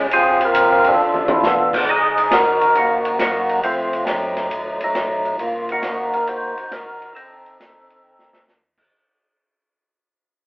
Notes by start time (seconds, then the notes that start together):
0.10 D2 C4 F4 G#4, ride
0.41 ride
0.45 F4 A#4
0.54 C2, hi-hat pedal, ride
0.84 D4 F4, ride
0.89 A4
0.97 G1
1.14 mid tom
1.28 E4, mid tom
1.42 B1 B3 D4 F4, snare, hi-hat pedal
1.73 kick, crash
1.86 C2 D#4
1.90 G#4
2.18 ride
2.31 D#2 D#4 F#4 A#4, snare, hi-hat pedal, ride
2.61 ride
2.75 A#2 A#3 D#4 F#4, ride
3.05 ride
3.19 F#2 A#3 D#4 F#4, snare, hi-hat pedal, ride
3.49 ride
3.63 F2 A3 C4 F4, ride
3.93 ride
4.05 F#2 F#3 A3 D4 D#4, snare, hi-hat pedal, ride
4.36 snare, ride
4.50 D#2, ride
4.80 D#2 F#3 A3 D#4, ride
4.94 B1, snare, hi-hat pedal, ride
5.25 ride
5.38 C2 A#3 F4, ride
5.69 A#3 D#4 F#4, ride
5.82 C#2, snare, hi-hat pedal, ride
6.13 A#4, ride
6.27 D#2 D#4 F#4 C5, ride
6.56 D#2, ride
6.71 C2 D#4 F#4 A#4, snare, hi-hat pedal, ride
7.02 ride
7.15 F1 C4 D#4 A4, ride
7.46 ride
7.60 A1, snare, hi-hat pedal, ride
7.90 ride
8.04 C#2
8.19 snare
8.33 snare
8.48 snare, hi-hat pedal
8.78 kick, crash